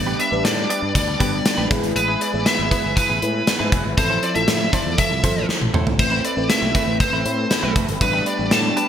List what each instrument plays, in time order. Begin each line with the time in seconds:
Already playing: fretless electric bass A1, fm electric piano G3 B3 D4 B4, analog synth pad G3 D4, lead electric guitar D5
0.06 clean electric guitar B3 D4 G4 B4
0.19 clean electric guitar B3 D4 G4 B4, lead electric guitar E5, closed hi-hat
0.31 fretless electric bass A1, fm electric piano G3 B3 D4 B4, muted clean electric guitar stroke
0.44 fretless electric bass A2, lead electric guitar D5, muted clean electric guitar stroke, snare, closed hi-hat, tambourine
0.57 muted clean electric guitar stroke
0.69 clean electric guitar B3 D4 G4 B4, closed hi-hat
0.82 fretless electric bass G2, muted clean electric guitar stroke
0.95 fretless electric bass D2, lead electric guitar D5, muted clean electric guitar stroke, kick, closed hi-hat
1.07 muted clean electric guitar stroke
1.20 fretless electric bass G1, fm electric piano G3 B3 D4 B4, clean electric guitar B3 D4 G4 B4, kick, closed hi-hat
1.32 muted clean electric guitar stroke
1.45 muted clean electric guitar stroke, snare, closed hi-hat, tambourine
1.57 fretless electric bass A1, clean electric guitar B3 D4 G4 B4
1.70 fretless electric bass A1, fm electric piano G#3 B3 E4 B4, analog synth pad E4 G#4 B4, muted clean electric guitar stroke, kick, closed hi-hat
1.83 fretless electric bass G#1, muted clean electric guitar stroke, closed hi-hat
1.95 fretless electric bass A1, lead electric guitar B4, muted clean electric guitar stroke, closed hi-hat
2.08 clean electric guitar B3 E4 G#4 B4
2.21 clean electric guitar B3 E4 G#4 B4, lead electric guitar D5, closed hi-hat
2.33 fretless electric bass A1, fm electric piano G#3 B3 E4 B4, muted clean electric guitar stroke
2.46 lead electric guitar E5, muted clean electric guitar stroke, snare, closed hi-hat, tambourine
2.59 fretless electric bass G#1, muted clean electric guitar stroke
2.71 clean electric guitar B3 E4 G#4 B4, kick, closed hi-hat
2.83 fretless electric bass G1, clean electric guitar B3 E4 G#4 B4
2.96 lead electric guitar B4, muted clean electric guitar stroke, kick, closed hi-hat
3.09 fretless electric bass A1, clean electric guitar B3 E4 G#4 B4
3.22 fretless electric bass A2, fm electric piano G#3 B3 E4 B4, muted clean electric guitar stroke, closed hi-hat
3.34 muted clean electric guitar stroke
3.47 muted clean electric guitar stroke, snare, closed hi-hat, tambourine
3.59 fretless electric bass G#2, clean electric guitar B3 E4 G#4 B4
3.72 fretless electric bass F1, clean electric guitar B3 E4 G#4 B4, kick, closed hi-hat
3.85 fretless electric bass G#1, muted clean electric guitar stroke
3.97 fretless electric bass A1, fm electric piano F3 C4 E4 A4, analog synth pad F3, lead electric guitar C5, muted clean electric guitar stroke, kick, closed hi-hat
4.10 clean electric guitar C4 E4 A4 C5
4.22 clean electric guitar C4 E4 A4 C5, lead electric guitar D5, closed hi-hat
4.35 fretless electric bass A1, fm electric piano F3 C4 E4 A4, lead electric guitar E5, muted clean electric guitar stroke, closed hi-hat
4.48 fretless electric bass A2, muted clean electric guitar stroke, snare, closed hi-hat, tambourine
4.61 muted clean electric guitar stroke
4.73 clean electric guitar C4 E4 A4 C5, lead electric guitar D5, kick, closed hi-hat
4.86 fretless electric bass E2, muted clean electric guitar stroke
4.98 lead electric guitar E5, muted clean electric guitar stroke, kick, closed hi-hat
5.11 fretless electric bass C2, muted clean electric guitar stroke
5.23 fretless electric bass G1, fm electric piano F3 C4 E4 A4, clean electric guitar C4 E4 A4 C5, kick, closed hi-hat
5.36 fretless electric bass A1, muted clean electric guitar stroke
5.49 snare
5.61 fretless electric bass A1, muted clean electric guitar stroke, high tom
5.74 fretless electric bass A2, clean electric guitar C4 E4 A4 C5, mid tom
5.87 muted clean electric guitar stroke, floor tom
5.98 fretless electric bass A1, fm electric piano A3 C4 E4 B4, analog synth pad A3 C4, lead electric guitar C5, muted clean electric guitar stroke, kick, splash
6.11 clean electric guitar A3 C4 E4 B4
6.24 clean electric guitar A3 C4 E4 B4, lead electric guitar D5, closed hi-hat
6.36 fretless electric bass A1, fm electric piano A3 C4 E4 B4, muted clean electric guitar stroke
6.49 lead electric guitar E5, muted clean electric guitar stroke, snare, closed hi-hat, tambourine
6.62 fretless electric bass B1, muted clean electric guitar stroke
6.75 clean electric guitar A3 C4 E4 B4, kick, closed hi-hat
6.87 fretless electric bass A1, clean electric guitar A3 C4 E4 B4
7.00 lead electric guitar C5, kick, closed hi-hat
7.13 fretless electric bass A1, clean electric guitar A3 C4 E4 B4
7.25 fretless electric bass A2, fm electric piano A3 C4 E4 B5, muted clean electric guitar stroke, closed hi-hat
7.38 muted clean electric guitar stroke
7.50 muted clean electric guitar stroke, snare, closed hi-hat, tambourine
7.63 fretless electric bass B1, clean electric guitar A3 C4 E4 B4
7.75 fretless electric bass F1, clean electric guitar A3 C4 E4 B4, kick, closed hi-hat
7.88 fretless electric bass G1, muted clean electric guitar stroke, closed hi-hat
8.01 fretless electric bass A1, fm electric piano G3 B3 D4 B4, analog synth pad G3 D4, lead electric guitar B4, muted clean electric guitar stroke, kick, closed hi-hat
8.13 clean electric guitar B3 D4 G4 B4
8.26 clean electric guitar B3 D4 G4 B4, lead electric guitar D5, closed hi-hat
8.38 fretless electric bass A1, fm electric piano G3 B3 D4 B4, muted clean electric guitar stroke
8.51 fretless electric bass A2, lead electric guitar A5, muted clean electric guitar stroke, snare, closed hi-hat, tambourine
8.63 muted clean electric guitar stroke
8.76 clean electric guitar B3 D4 G4 B4, closed hi-hat